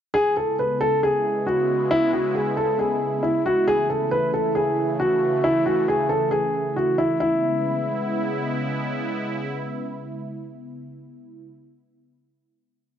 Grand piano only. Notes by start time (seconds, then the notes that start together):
0.14 G#4
0.37 A4
0.59 B4
0.81 A4
1.03 G#4
1.47 F#4
1.91 E4
2.13 F#4
2.35 G#4
2.57 A4
2.79 G#4
3.23 E4
3.46 F#4
3.68 G#4
3.90 A4
4.11 B4
4.34 A4
4.55 G#4
5.00 F#4
5.44 E4
5.66 F#4
5.88 G#4
6.09 A4
6.31 G#4
6.76 F#4
6.98 E4
7.20 E4